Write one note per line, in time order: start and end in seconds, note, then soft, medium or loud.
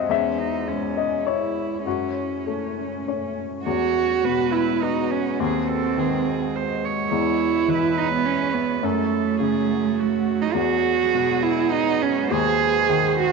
0.00 0.12 D#2 medium
0.00 0.12 G#3 soft
0.00 1.85 G#3 medium
0.00 0.12 F#4 soft
0.00 0.12 C5 soft
0.00 0.12 D#5 medium
0.00 0.11 E5 medium
0.00 0.12 F#5 medium
0.00 0.12 G#5 medium
0.08 1.81 E2 soft
0.08 0.40 C#4 soft
0.08 1.85 E4 soft
0.08 3.65 C#5 medium
0.08 0.93 E5 medium
0.39 0.69 D#4 medium
0.68 1.62 G#3 soft
0.68 1.27 C#4 soft
0.97 1.24 D#5 soft
1.26 1.85 E4 soft
1.26 1.82 E4 soft
1.26 1.82 C#5 soft
1.85 3.62 F#2 soft
1.85 3.65 A3 soft
1.85 3.65 C#4 medium
1.85 3.33 C#4 soft
1.85 3.03 F#4 soft
2.47 3.42 A3 soft
3.07 3.62 C#4 soft
3.07 3.62 C#5 soft
3.65 5.36 E2 soft
3.65 8.80 G#3 medium
3.65 4.53 F#4 medium
3.65 7.08 F#4 medium
3.65 5.36 B4 medium
3.65 4.26 C#5 soft
4.24 5.40 B2 soft
4.24 4.53 B4 medium
4.52 4.83 E4 medium
4.52 4.86 B4 soft
4.82 5.12 D#4 medium
4.82 5.41 F#4 soft
5.11 5.41 C#4 medium
5.39 7.08 D#2 medium
5.39 6.83 C4 medium
5.39 5.69 G#4 soft
5.39 7.12 D#5 medium
5.70 6.01 A4 medium
5.97 7.11 D#3 soft
5.97 6.57 G#4 soft
6.56 6.86 C5 soft
6.85 7.70 C#5 soft
7.10 8.80 E2 soft
7.10 8.83 E4 medium
7.10 8.00 E4 medium
7.10 10.55 C#5 medium
7.68 8.83 E3 soft
7.68 8.86 B4 medium
7.98 8.12 D#4 medium
8.13 8.27 B3 medium
8.25 8.55 C#4 medium
8.54 8.82 B3 medium
8.81 10.51 F#2 soft
8.81 10.54 F#3 medium
8.81 10.43 A3 medium
8.81 13.32 F#4 medium
8.81 9.40 A4 soft
9.40 10.55 C#3 soft
9.40 10.01 G#4 medium
10.00 10.55 F#4 medium
10.42 10.55 D#4 medium
10.54 12.26 E2 medium
10.54 13.32 G#3 medium
10.54 11.44 F#4 medium
10.54 12.26 G#4 medium
10.54 12.30 B4 medium
11.14 12.31 B2 soft
11.43 11.73 E4 medium
11.72 12.03 D#4 medium
12.02 12.32 C#4 medium
12.30 13.32 D#2 medium
12.30 13.18 G#4 medium
12.30 13.32 C5 medium
12.89 13.32 D#3 soft
13.19 13.32 F#4 medium